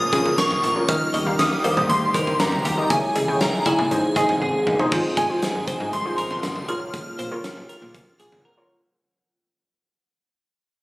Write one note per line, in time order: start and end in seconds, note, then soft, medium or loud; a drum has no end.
0.00 0.86 C#3 medium
0.00 0.85 F3 medium
0.00 2.86 A#3 medium
0.00 0.86 F4 medium
0.00 0.35 D#6 loud
0.13 0.24 A#1 loud
0.13 0.61 C#4 medium
0.13 0.61 F4 medium
0.13 0.33 G#4 medium
0.13 0.61 A#4 medium
0.13 0.61 C#5 medium
0.13 kick medium
0.13 closed hi-hat medium
0.26 mid tom medium
0.38 0.50 A#1 medium
0.38 0.74 A#4 medium
0.38 0.90 C#6 loud
0.38 snare loud
0.38 closed hi-hat medium
0.51 mid tom loud
0.63 0.75 A#1 loud
0.63 closed hi-hat medium
0.76 0.86 C#4 medium
0.76 0.86 F4 medium
0.76 0.86 A#4 medium
0.76 0.86 C#5 medium
0.89 1.00 D#2 loud
0.89 2.88 D#3 medium
0.89 2.88 G3 medium
0.89 1.17 D#4 medium
0.89 2.88 G4 medium
0.89 1.17 G4 medium
0.89 1.17 A#4 medium
0.89 1.17 D#5 medium
0.89 1.41 F6 loud
0.89 kick loud
0.89 closed hi-hat medium
1.14 1.25 D#2 loud
1.14 1.24 D#5 medium
1.14 closed hi-hat medium
1.26 1.38 D#2 loud
1.26 1.55 D#4 medium
1.26 1.55 G4 medium
1.26 1.55 A#4 medium
1.26 1.55 F5 medium
1.39 1.50 D#2 loud
1.39 1.86 D#6 loud
1.39 snare loud
1.39 closed hi-hat medium
1.64 1.76 D#2 loud
1.64 2.02 D#4 medium
1.64 2.02 G4 medium
1.64 2.02 A#4 medium
1.64 1.85 C5 medium
1.64 2.02 F5 medium
1.64 closed hi-hat medium
1.64 cowbell medium
1.77 1.88 D#2 loud
1.77 mid tom loud
1.89 2.01 D#2 loud
1.89 2.36 C6 loud
1.89 closed hi-hat medium
2.14 2.26 D#2 loud
2.14 2.62 D#4 medium
2.14 2.62 G4 medium
2.14 2.62 A#4 medium
2.14 2.35 A#4 medium
2.14 2.62 C5 medium
2.14 kick medium
2.14 closed hi-hat medium
2.27 mid tom medium
2.40 2.51 D#2 loud
2.40 2.87 A#5 medium
2.40 snare loud
2.40 closed hi-hat medium
2.52 mid tom loud
2.65 2.76 D#2 loud
2.65 2.75 G4 medium
2.65 closed hi-hat medium
2.78 2.87 D#4 medium
2.78 2.87 G4 medium
2.78 2.87 A#4 medium
2.78 2.87 D#5 medium
2.90 3.02 C#2 loud
2.90 3.90 C#3 medium
2.90 3.90 E3 medium
2.90 3.90 G#3 medium
2.90 3.90 E4 medium
2.90 3.19 E4 medium
2.90 3.19 G#4 medium
2.90 3.19 C#5 medium
2.90 3.19 E5 medium
2.90 3.37 G#5 medium
2.90 kick loud
2.90 closed hi-hat medium
3.16 3.27 C#2 loud
3.16 3.26 G#4 medium
3.16 closed hi-hat medium
3.16 cowbell medium
3.28 3.40 C#2 loud
3.28 3.57 E4 medium
3.28 3.57 G#4 medium
3.28 3.57 C#5 medium
3.28 3.57 G5 medium
3.41 3.52 C#2 loud
3.41 3.64 A#5 medium
3.41 snare loud
3.41 closed hi-hat medium
3.66 3.77 C#2 loud
3.66 3.86 E4 medium
3.66 3.91 E4 medium
3.66 3.90 G#4 medium
3.66 3.91 C#5 medium
3.66 3.91 E5 medium
3.66 4.63 G#5 medium
3.66 kick medium
3.66 closed hi-hat medium
3.66 cowbell medium
3.79 3.90 C#2 loud
3.79 mid tom loud
3.91 4.03 G#1 loud
3.91 4.91 C3 medium
3.91 4.91 D#3 medium
3.91 4.91 G#3 medium
3.91 4.91 D#4 medium
3.91 4.11 D#4 medium
3.91 4.11 G#4 medium
3.91 4.11 C5 medium
3.91 4.11 D#5 medium
3.91 closed hi-hat medium
4.16 4.28 G#1 loud
4.16 4.64 D#4 medium
4.16 4.37 G#4 medium
4.16 4.64 G#4 medium
4.16 4.64 C5 medium
4.16 4.64 D#5 medium
4.16 kick medium
4.16 closed hi-hat medium
4.29 mid tom medium
4.42 4.53 G#1 loud
4.42 4.77 G#4 medium
4.42 high tom medium
4.67 4.78 G#1 loud
4.67 mid tom medium
4.79 4.89 D#4 medium
4.79 4.89 G#4 medium
4.79 4.89 C5 medium
4.79 4.89 D#5 loud
4.79 floor tom loud
4.92 5.03 G#1 loud
4.92 6.67 C3 medium
4.92 8.91 F3 medium
4.92 6.67 G#3 medium
4.92 6.67 D#4 medium
4.92 5.20 F4 medium
4.92 5.21 G#4 medium
4.92 5.21 C5 loud
4.92 kick loud
4.92 crash medium
5.17 5.29 G#2 loud
5.17 5.27 D#5 medium
5.17 5.89 G#5 medium
5.17 kick medium
5.17 closed hi-hat medium
5.30 5.87 F4 medium
5.30 5.87 G#4 medium
5.30 5.87 C5 medium
5.42 snare loud
5.42 closed hi-hat medium
5.55 5.66 G#1 loud
5.68 5.88 C5 medium
5.68 kick medium
5.68 closed hi-hat medium
5.80 5.92 G#2 loud
5.93 6.04 G#1 loud
5.93 6.30 C6 medium
5.93 closed hi-hat medium
6.05 6.67 F4 medium
6.05 6.68 G#4 medium
6.05 6.68 C5 medium
6.18 6.29 G#1 loud
6.18 6.38 A#4 medium
6.18 closed hi-hat medium
6.31 6.66 C6 medium
6.31 mid tom medium
6.43 6.55 G#1 loud
6.43 snare loud
6.43 closed hi-hat medium
6.56 mid tom medium
6.68 7.03 A#1 loud
6.68 8.93 C#3 medium
6.68 8.93 A#3 medium
6.68 7.19 F4 medium
6.68 8.93 F4 medium
6.68 6.79 G#4 medium
6.68 7.19 A#4 medium
6.68 7.19 C#5 medium
6.68 8.41 F6 medium
6.68 closed hi-hat medium
6.94 kick loud
6.94 closed hi-hat medium
7.19 7.30 A#2 loud
7.19 7.29 C5 medium
7.19 closed hi-hat medium
7.32 8.07 F4 medium
7.32 8.08 A#4 medium
7.32 8.07 C#5 loud
7.44 snare loud
7.44 closed hi-hat medium
7.57 7.68 A#1 medium
7.69 7.90 A#4 medium
7.69 closed hi-hat medium
7.82 7.93 A#2 loud
7.95 8.06 A#1 loud
7.95 kick medium
7.95 closed hi-hat medium
8.20 8.31 A#1 medium
8.20 8.40 G#4 medium
8.20 closed hi-hat medium
8.32 mid tom medium
8.45 8.81 A#4 medium
8.58 8.86 F4 medium
8.58 8.86 A#4 medium
8.58 8.86 C#5 medium